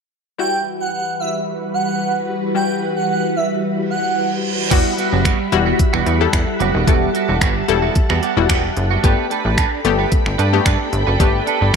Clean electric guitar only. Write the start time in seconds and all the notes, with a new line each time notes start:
4.71 G3 B3 F#4
4.98 G3 B3 F#4
5.12 G3 B3 F#4
5.25 G3 B3 F#4
5.39 muted clean electric guitar stroke
5.52 muted clean electric guitar stroke
5.66 G3 B3 F#4
5.79 muted clean electric guitar stroke
5.93 G3 B3 F#4
6.06 G3 B3 F#4
6.20 muted clean electric guitar stroke
6.33 muted clean electric guitar stroke
6.47 muted clean electric guitar stroke
6.60 G3 B3 F#4
6.74 G3 B3 F#4
6.87 G3 B3 F#4
7.14 G3 B3 F#4
7.28 G3 B3 F#4
7.41 G3 B3 F#4
7.56 muted clean electric guitar stroke
7.68 muted clean electric guitar stroke
7.82 G3 B3 F#4
7.95 muted clean electric guitar stroke
8.09 G3 B3 F#4
8.22 G3 B3 F#4
8.37 muted clean electric guitar stroke
8.49 G3 B3 F#4
8.64 muted clean electric guitar stroke
8.77 muted clean electric guitar stroke
8.91 G3 B3 F#4
9.03 D4 A4 B4
9.30 D4 A4 B4
9.45 D4 A4 B4
9.57 D4 A4 B4
9.72 muted clean electric guitar stroke
9.85 muted clean electric guitar stroke
9.99 D4 A4 B4
10.12 muted clean electric guitar stroke
10.26 muted clean electric guitar stroke
10.38 D4 A4 B4
10.53 muted clean electric guitar stroke
10.65 D4 A4 B4
10.80 muted clean electric guitar stroke
10.93 muted clean electric guitar stroke
11.07 D4 A4 B4
11.19 D4 A4 B4
11.47 D4 A4 B4
11.61 D4 A4 B4